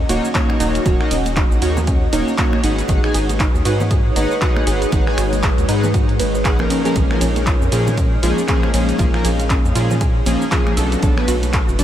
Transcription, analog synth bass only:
0, 0, Header, 1, 2, 480
1, 0, Start_track
1, 0, Key_signature, -6, "minor"
1, 0, Tempo, 508475
1, 808, Time_signature, 4, 2, 24, 8
1, 11176, End_track
2, 0, Start_track
2, 0, Title_t, "Analog synth bass"
2, 0, Program_c, 0, 38
2, 88, Note_on_c, 0, 27, 97
2, 185, Note_off_c, 0, 27, 0
2, 569, Note_on_c, 0, 27, 92
2, 746, Note_off_c, 0, 27, 0
2, 809, Note_on_c, 0, 27, 101
2, 905, Note_off_c, 0, 27, 0
2, 1049, Note_on_c, 0, 27, 84
2, 1359, Note_off_c, 0, 27, 0
2, 1429, Note_on_c, 0, 34, 84
2, 1497, Note_off_c, 0, 34, 0
2, 1529, Note_on_c, 0, 39, 106
2, 1959, Note_off_c, 0, 39, 0
2, 2009, Note_on_c, 0, 27, 96
2, 2105, Note_off_c, 0, 27, 0
2, 2488, Note_on_c, 0, 32, 88
2, 2666, Note_off_c, 0, 32, 0
2, 2729, Note_on_c, 0, 32, 104
2, 2825, Note_off_c, 0, 32, 0
2, 2969, Note_on_c, 0, 32, 83
2, 3279, Note_off_c, 0, 32, 0
2, 3350, Note_on_c, 0, 39, 89
2, 3417, Note_off_c, 0, 39, 0
2, 3449, Note_on_c, 0, 44, 109
2, 3879, Note_off_c, 0, 44, 0
2, 3928, Note_on_c, 0, 32, 100
2, 4025, Note_off_c, 0, 32, 0
2, 4408, Note_on_c, 0, 32, 90
2, 4586, Note_off_c, 0, 32, 0
2, 4649, Note_on_c, 0, 32, 96
2, 4745, Note_off_c, 0, 32, 0
2, 4888, Note_on_c, 0, 32, 86
2, 5198, Note_off_c, 0, 32, 0
2, 5269, Note_on_c, 0, 39, 84
2, 5337, Note_off_c, 0, 39, 0
2, 5368, Note_on_c, 0, 44, 107
2, 5848, Note_on_c, 0, 32, 104
2, 5862, Note_off_c, 0, 44, 0
2, 6279, Note_off_c, 0, 32, 0
2, 6569, Note_on_c, 0, 34, 99
2, 6665, Note_off_c, 0, 34, 0
2, 6808, Note_on_c, 0, 34, 83
2, 7119, Note_off_c, 0, 34, 0
2, 7189, Note_on_c, 0, 41, 88
2, 7257, Note_off_c, 0, 41, 0
2, 7288, Note_on_c, 0, 46, 104
2, 7719, Note_off_c, 0, 46, 0
2, 7769, Note_on_c, 0, 34, 93
2, 7865, Note_off_c, 0, 34, 0
2, 8249, Note_on_c, 0, 34, 84
2, 8426, Note_off_c, 0, 34, 0
2, 8489, Note_on_c, 0, 34, 99
2, 8585, Note_off_c, 0, 34, 0
2, 8729, Note_on_c, 0, 34, 83
2, 9039, Note_off_c, 0, 34, 0
2, 9109, Note_on_c, 0, 41, 88
2, 9177, Note_off_c, 0, 41, 0
2, 9208, Note_on_c, 0, 46, 110
2, 9639, Note_off_c, 0, 46, 0
2, 9688, Note_on_c, 0, 34, 99
2, 9785, Note_off_c, 0, 34, 0
2, 10168, Note_on_c, 0, 35, 91
2, 10346, Note_off_c, 0, 35, 0
2, 10408, Note_on_c, 0, 35, 98
2, 10505, Note_off_c, 0, 35, 0
2, 10648, Note_on_c, 0, 35, 88
2, 10959, Note_off_c, 0, 35, 0
2, 11029, Note_on_c, 0, 30, 89
2, 11097, Note_off_c, 0, 30, 0
2, 11128, Note_on_c, 0, 30, 107
2, 11176, Note_off_c, 0, 30, 0
2, 11176, End_track
0, 0, End_of_file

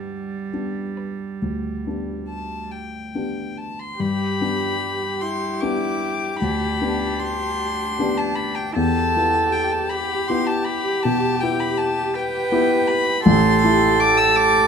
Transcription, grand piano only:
0, 0, Header, 1, 2, 480
1, 0, Start_track
1, 0, Key_signature, 1, "major"
1, 0, Tempo, 877193
1, 1258, Tempo, 851064
1, 2218, Tempo, 800000
1, 2219, Time_signature, 12, 3, 24, 8
1, 4138, Tempo, 778210
1, 5578, Tempo, 745342
1, 8887, End_track
2, 0, Start_track
2, 0, Title_t, "Grand piano"
2, 0, Program_c, 0, 0
2, 0, Control_c, 0, 64, 127
2, 0, Note_on_c, 0, 43, 35
2, 0, Note_on_c, 0, 59, 26
2, 0, Note_on_c, 0, 62, 26
2, 0, Note_on_c, 0, 67, 26
2, 271, Note_off_c, 0, 59, 0
2, 272, Note_off_c, 0, 62, 0
2, 273, Note_off_c, 0, 67, 0
2, 291, Note_on_c, 0, 59, 21
2, 292, Note_on_c, 0, 62, 23
2, 294, Note_on_c, 0, 67, 25
2, 754, Note_off_c, 0, 59, 0
2, 755, Note_off_c, 0, 62, 0
2, 756, Note_off_c, 0, 67, 0
2, 776, Note_on_c, 0, 38, 27
2, 1012, Note_off_c, 0, 38, 0
2, 1022, Note_on_c, 0, 59, 21
2, 1024, Note_on_c, 0, 62, 21
2, 1026, Note_on_c, 0, 67, 24
2, 1713, Note_off_c, 0, 59, 0
2, 1714, Note_off_c, 0, 62, 0
2, 1715, Note_off_c, 0, 67, 0
2, 1738, Note_on_c, 0, 59, 24
2, 1739, Note_on_c, 0, 62, 23
2, 1742, Note_on_c, 0, 67, 28
2, 2197, Note_off_c, 0, 59, 0
2, 2198, Note_off_c, 0, 62, 0
2, 2199, Note_off_c, 0, 67, 0
2, 2216, Note_off_c, 0, 43, 0
2, 2216, Note_on_c, 0, 43, 46
2, 2229, Control_c, 0, 64, 0
2, 2346, Control_c, 0, 64, 127
2, 2453, Note_off_c, 0, 43, 0
2, 2463, Note_on_c, 0, 59, 34
2, 2466, Note_on_c, 0, 62, 34
2, 2470, Note_on_c, 0, 67, 34
2, 3161, Note_off_c, 0, 59, 0
2, 3163, Note_off_c, 0, 62, 0
2, 3165, Note_off_c, 0, 67, 0
2, 3189, Note_on_c, 0, 59, 36
2, 3191, Note_on_c, 0, 62, 33
2, 3192, Note_on_c, 0, 67, 35
2, 3640, Note_off_c, 0, 59, 0
2, 3640, Note_off_c, 0, 62, 0
2, 3641, Note_off_c, 0, 67, 0
2, 3666, Note_on_c, 0, 38, 40
2, 3894, Note_off_c, 0, 38, 0
2, 3904, Note_on_c, 0, 59, 36
2, 3906, Note_on_c, 0, 62, 37
2, 3908, Note_on_c, 0, 67, 39
2, 4601, Note_off_c, 0, 59, 0
2, 4602, Note_off_c, 0, 62, 0
2, 4603, Note_off_c, 0, 67, 0
2, 4624, Note_on_c, 0, 59, 43
2, 4629, Note_on_c, 0, 62, 44
2, 4629, Note_on_c, 0, 67, 46
2, 5075, Note_off_c, 0, 59, 0
2, 5078, Note_off_c, 0, 62, 0
2, 5078, Note_off_c, 0, 67, 0
2, 5100, Note_on_c, 0, 40, 56
2, 5110, Control_c, 0, 64, 0
2, 5200, Control_c, 0, 64, 127
2, 5334, Note_off_c, 0, 40, 0
2, 5347, Note_on_c, 0, 64, 39
2, 5348, Note_on_c, 0, 59, 37
2, 5351, Note_on_c, 0, 67, 43
2, 6042, Note_off_c, 0, 59, 0
2, 6042, Note_off_c, 0, 64, 0
2, 6043, Note_off_c, 0, 67, 0
2, 6068, Note_on_c, 0, 64, 40
2, 6070, Note_on_c, 0, 59, 42
2, 6074, Note_on_c, 0, 67, 43
2, 6522, Note_off_c, 0, 64, 0
2, 6523, Note_off_c, 0, 59, 0
2, 6526, Note_off_c, 0, 67, 0
2, 6553, Note_on_c, 0, 47, 52
2, 6786, Note_off_c, 0, 47, 0
2, 6794, Note_on_c, 0, 59, 42
2, 6796, Note_on_c, 0, 64, 44
2, 6799, Note_on_c, 0, 67, 49
2, 7477, Note_off_c, 0, 59, 0
2, 7478, Note_off_c, 0, 64, 0
2, 7479, Note_off_c, 0, 67, 0
2, 7499, Note_on_c, 0, 59, 52
2, 7502, Note_on_c, 0, 64, 52
2, 7505, Note_on_c, 0, 67, 58
2, 7949, Note_off_c, 0, 59, 0
2, 7951, Note_off_c, 0, 64, 0
2, 7952, Note_off_c, 0, 67, 0
2, 7975, Note_on_c, 0, 33, 70
2, 7988, Control_c, 0, 64, 0
2, 8077, Control_c, 0, 64, 127
2, 8207, Note_off_c, 0, 33, 0
2, 8220, Note_on_c, 0, 57, 48
2, 8223, Note_on_c, 0, 64, 55
2, 8226, Note_on_c, 0, 67, 59
2, 8887, Note_off_c, 0, 57, 0
2, 8887, Note_off_c, 0, 64, 0
2, 8887, Note_off_c, 0, 67, 0
2, 8887, End_track
0, 0, End_of_file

